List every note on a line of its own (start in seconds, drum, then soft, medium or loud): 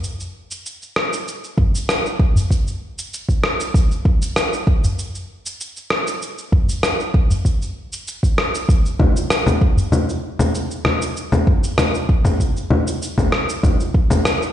0.04 cabasa medium
0.20 cabasa soft
0.51 cabasa medium
0.66 cabasa medium
0.82 cabasa soft
0.96 cross-stick medium
1.13 cabasa medium
1.28 cabasa medium
1.44 cabasa soft
1.58 kick loud
1.58 udu medium
1.75 cabasa medium
1.89 cross-stick medium
1.89 cabasa medium
2.06 cabasa soft
2.19 kick loud
2.36 udu medium
2.36 cabasa medium
2.51 kick medium
2.51 cabasa medium
2.68 cabasa soft
2.99 cabasa medium
3.14 cabasa medium
3.29 kick medium
3.29 cabasa soft
3.44 cross-stick medium
3.60 cabasa medium
3.74 kick loud
3.74 cabasa medium
3.91 cabasa soft
4.05 kick loud
4.22 cabasa medium
4.36 cross-stick medium
4.36 cabasa medium
4.53 cabasa soft
4.67 kick loud
4.84 udu medium
4.84 cabasa medium
4.99 cabasa medium
5.15 cabasa soft
5.46 cabasa medium
5.61 cabasa medium
5.77 cabasa soft
5.90 cross-stick medium
6.07 cabasa medium
6.22 cabasa medium
6.38 cabasa soft
6.52 kick loud
6.52 udu medium
6.69 cabasa medium
6.83 cross-stick medium
6.83 cabasa medium
7.00 cabasa soft
7.14 kick loud
7.30 udu medium
7.30 cabasa medium
7.45 kick medium
7.45 cabasa medium
7.62 cabasa soft
7.93 cabasa medium
8.08 cabasa medium
8.23 kick medium
8.23 cabasa soft
8.38 cross-stick medium
8.55 cabasa medium
8.69 kick loud
8.69 cabasa medium
8.86 cabasa soft
9.00 kick medium
9.00 low conga medium
9.17 cabasa medium
9.30 cross-stick medium
9.30 cabasa medium
9.47 low conga medium
9.47 cabasa soft
9.61 kick loud
9.77 udu medium
9.77 cabasa medium
9.92 low conga medium
9.92 cabasa medium
10.09 cabasa soft
10.39 low conga medium
10.39 cabasa medium
10.55 cabasa medium
10.71 cabasa soft
10.85 cross-stick medium
10.85 low conga medium
11.02 cabasa medium
11.17 cabasa soft
11.32 low conga medium
11.32 cabasa soft
11.47 kick medium
11.47 udu medium
11.64 cabasa medium
11.78 cross-stick medium
11.78 low conga medium
11.78 cabasa medium
11.95 cabasa soft
12.09 kick loud
12.25 low conga medium
12.25 udu medium
12.25 cabasa medium
12.40 kick medium
12.40 cabasa medium
12.57 cabasa soft
12.70 low conga medium
12.87 cabasa medium
13.02 cabasa medium
13.18 kick medium
13.18 low conga medium
13.18 cabasa soft
13.32 cross-stick medium
13.49 cabasa medium
13.63 kick loud
13.63 low conga medium
13.63 cabasa soft
13.80 cabasa soft
13.94 kick medium
14.10 low conga medium
14.10 cabasa medium
14.25 cross-stick medium
14.25 cabasa medium
14.42 cabasa soft